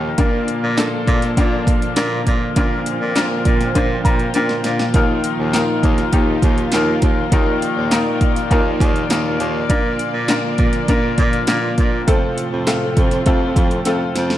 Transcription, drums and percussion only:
0.18 kick medium
0.18 closed hi-hat medium
0.48 closed hi-hat medium
0.78 snare loud
0.78 clap medium
0.78 closed hi-hat medium
1.07 kick medium
1.07 closed hi-hat medium
1.22 snare soft
1.22 closed hi-hat soft
1.37 kick medium
1.37 closed hi-hat medium
1.67 kick medium
1.67 closed hi-hat medium
1.82 closed hi-hat soft
1.96 snare loud
1.96 clap medium
1.96 closed hi-hat medium
2.27 kick medium
2.27 closed hi-hat medium
2.56 kick loud
2.56 closed hi-hat medium
2.86 closed hi-hat medium
3.16 snare loud
3.16 clap medium
3.16 closed hi-hat medium
3.45 kick medium
3.45 closed hi-hat medium
3.61 snare soft
3.61 closed hi-hat soft
3.75 kick medium
3.75 closed hi-hat medium
4.05 kick medium
4.05 closed hi-hat medium
4.19 closed hi-hat soft
4.34 snare soft
4.34 closed hi-hat medium
4.49 snare medium
4.64 snare medium
4.64 closed hi-hat medium
4.79 snare medium
4.94 kick loud
4.94 closed hi-hat medium
5.24 closed hi-hat medium
5.54 snare loud
5.54 clap medium
5.54 closed hi-hat medium
5.83 kick medium
5.83 closed hi-hat medium
5.98 snare soft
5.98 closed hi-hat soft
6.13 kick medium
6.13 closed hi-hat medium
6.42 kick medium
6.42 closed hi-hat medium
6.58 closed hi-hat soft
6.72 snare medium
6.72 clap medium
6.72 closed hi-hat medium
7.02 kick medium
7.02 closed hi-hat medium
7.32 kick loud
7.32 closed hi-hat medium
7.62 closed hi-hat medium
7.91 snare loud
7.91 clap medium
7.91 closed hi-hat medium
8.21 kick medium
8.21 closed hi-hat medium
8.36 snare soft
8.36 closed hi-hat soft
8.51 kick medium
8.51 closed hi-hat medium
8.80 kick medium
8.80 closed hi-hat medium
8.96 closed hi-hat soft
9.10 snare loud
9.10 clap medium
9.10 closed hi-hat medium
9.40 closed hi-hat medium
9.70 kick loud
9.70 closed hi-hat medium
9.99 closed hi-hat medium
10.28 snare loud
10.28 clap medium
10.28 closed hi-hat medium
10.58 kick medium
10.58 closed hi-hat medium
10.73 snare soft
10.73 closed hi-hat soft
10.88 kick medium
10.88 closed hi-hat medium
11.18 kick medium
11.18 closed hi-hat medium
11.33 closed hi-hat soft
11.47 snare loud
11.47 clap medium
11.47 closed hi-hat medium
11.78 kick medium
11.78 closed hi-hat medium
12.08 kick medium
12.08 closed hi-hat medium
12.38 closed hi-hat medium
12.67 snare loud
12.67 clap medium
12.67 closed hi-hat medium
12.97 kick medium
12.97 closed hi-hat medium
13.11 snare soft
13.11 closed hi-hat soft
13.26 kick medium
13.26 closed hi-hat medium
13.56 kick medium
13.56 closed hi-hat medium
13.71 closed hi-hat soft
13.85 snare medium
13.85 closed hi-hat medium
14.16 snare medium
14.16 closed hi-hat medium
14.30 snare medium

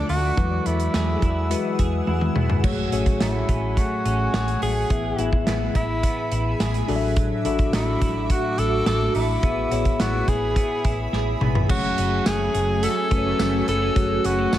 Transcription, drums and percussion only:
0.09 open hi-hat medium
0.37 kick loud
0.37 closed hi-hat medium
0.66 closed hi-hat medium
0.80 closed hi-hat medium
0.94 snare loud
0.94 closed hi-hat medium
1.22 kick medium
1.22 closed hi-hat medium
1.51 closed hi-hat loud
1.79 kick medium
1.79 closed hi-hat medium
2.07 high tom soft
2.21 mid tom medium
2.36 mid tom medium
2.50 floor tom medium
2.64 kick loud
2.64 crash medium
2.92 closed hi-hat medium
3.06 kick medium
3.06 closed hi-hat medium
3.20 snare loud
3.20 closed hi-hat medium
3.49 kick medium
3.49 closed hi-hat medium
3.77 kick medium
3.77 closed hi-hat loud
4.06 closed hi-hat medium
4.34 snare loud
4.34 closed hi-hat medium
4.48 closed hi-hat soft
4.62 open hi-hat medium
4.90 kick loud
4.90 closed hi-hat medium
5.19 closed hi-hat medium
5.33 kick medium
5.47 snare loud
5.47 closed hi-hat medium
5.75 kick medium
5.75 closed hi-hat medium
6.03 kick medium
6.03 closed hi-hat loud
6.32 closed hi-hat medium
6.60 snare loud
6.60 closed hi-hat medium
6.74 closed hi-hat soft
6.88 open hi-hat medium
7.16 kick loud
7.16 closed hi-hat medium
7.45 closed hi-hat medium
7.59 kick medium
7.59 closed hi-hat medium
7.73 snare loud
7.73 closed hi-hat medium
8.01 kick medium
8.01 closed hi-hat medium
8.30 kick medium
8.30 closed hi-hat loud
8.58 closed hi-hat medium
8.86 snare loud
8.86 closed hi-hat medium
9.15 open hi-hat medium
9.43 kick loud
9.43 closed hi-hat medium
9.71 closed hi-hat medium
9.85 kick medium
9.85 closed hi-hat medium
10.00 snare loud
10.00 closed hi-hat medium
10.28 kick medium
10.28 closed hi-hat medium
10.56 kick medium
10.56 closed hi-hat loud
10.84 kick loud
10.84 closed hi-hat medium
11.13 snare medium
11.41 mid tom medium
11.55 floor tom medium
11.69 kick loud
11.69 crash medium
11.98 closed hi-hat medium
12.26 snare loud
12.26 closed hi-hat medium
12.26 tambourine medium
12.54 closed hi-hat medium
12.83 closed hi-hat loud
13.11 kick medium
13.11 closed hi-hat medium
13.39 snare loud
13.39 closed hi-hat medium
13.39 tambourine medium
13.68 closed hi-hat medium
13.96 kick loud
13.96 closed hi-hat medium
14.24 closed hi-hat medium
14.53 snare loud
14.53 closed hi-hat medium
14.53 tambourine medium

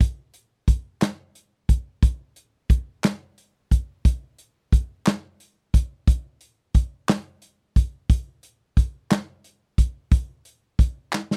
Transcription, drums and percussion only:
0.01 kick loud
0.01 closed hi-hat medium
0.34 closed hi-hat soft
0.68 kick medium
0.68 closed hi-hat medium
1.02 snare medium
1.02 clap medium
1.02 closed hi-hat medium
1.35 closed hi-hat soft
1.69 kick medium
1.69 closed hi-hat medium
2.03 kick loud
2.03 closed hi-hat medium
2.36 closed hi-hat soft
2.70 kick medium
2.70 closed hi-hat medium
3.04 snare medium
3.04 clap medium
3.04 closed hi-hat medium
3.38 closed hi-hat soft
3.71 kick medium
3.71 closed hi-hat medium
4.05 kick loud
4.05 closed hi-hat medium
4.39 closed hi-hat soft
4.72 kick medium
4.72 closed hi-hat medium
5.07 snare medium
5.07 clap medium
5.07 closed hi-hat medium
5.40 closed hi-hat soft
5.74 kick medium
5.74 closed hi-hat medium
6.07 kick loud
6.07 closed hi-hat medium
6.41 closed hi-hat soft
6.74 kick medium
6.74 closed hi-hat medium
7.09 snare loud
7.09 clap medium
7.09 closed hi-hat medium
7.42 closed hi-hat soft
7.76 kick medium
7.76 closed hi-hat medium
8.10 kick loud
8.10 closed hi-hat loud
8.43 closed hi-hat soft
8.77 kick medium
8.77 closed hi-hat medium
9.11 snare loud
9.11 clap medium
9.11 closed hi-hat medium
9.44 closed hi-hat soft
9.78 kick medium
9.78 closed hi-hat medium
10.12 kick loud
10.12 closed hi-hat medium
10.45 closed hi-hat soft
10.79 kick medium
10.79 closed hi-hat medium
11.13 snare soft
11.13 clap medium
11.31 snare medium

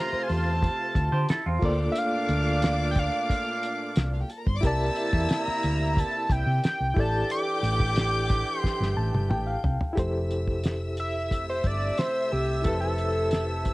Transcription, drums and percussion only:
0.29 open hi-hat medium
0.63 kick medium
0.63 closed hi-hat medium
0.95 kick medium
0.95 closed hi-hat medium
1.29 snare loud
1.29 closed hi-hat medium
1.63 kick loud
1.63 crash medium
1.96 closed hi-hat loud
2.29 closed hi-hat medium
2.62 snare loud
2.62 closed hi-hat loud
2.96 kick loud
2.96 snare soft
2.96 closed hi-hat medium
3.30 kick medium
3.30 closed hi-hat medium
3.63 closed hi-hat medium
3.96 snare loud
3.96 closed hi-hat loud
4.30 closed hi-hat medium
4.47 kick loud
4.63 kick loud
4.63 closed hi-hat loud
4.96 closed hi-hat medium
5.13 kick medium
5.29 snare loud
5.29 closed hi-hat medium
5.63 closed hi-hat medium
5.97 kick medium
5.97 closed hi-hat medium
6.30 kick loud
6.30 closed hi-hat medium
6.64 snare loud
6.64 closed hi-hat loud
6.97 kick loud
6.97 open hi-hat soft
7.30 closed hi-hat loud
7.64 closed hi-hat medium
7.80 kick medium
7.96 snare loud
7.96 closed hi-hat loud
8.30 kick loud
8.30 snare soft
8.30 closed hi-hat medium
8.64 kick medium
8.64 snare medium
8.82 snare medium
9.14 high tom medium
9.31 mid tom loud
9.64 floor tom loud
9.81 floor tom loud
9.97 kick loud
9.97 closed hi-hat loud
10.31 closed hi-hat medium
10.47 kick medium
10.64 snare loud
10.64 closed hi-hat medium
10.97 closed hi-hat medium
11.31 kick medium
11.31 closed hi-hat medium
11.64 kick medium
11.64 closed hi-hat medium
11.98 snare loud
11.98 closed hi-hat medium
12.31 open hi-hat soft
12.64 kick loud
12.64 closed hi-hat loud
12.98 closed hi-hat medium
13.31 snare loud
13.31 closed hi-hat medium
13.65 kick medium
13.65 closed hi-hat medium

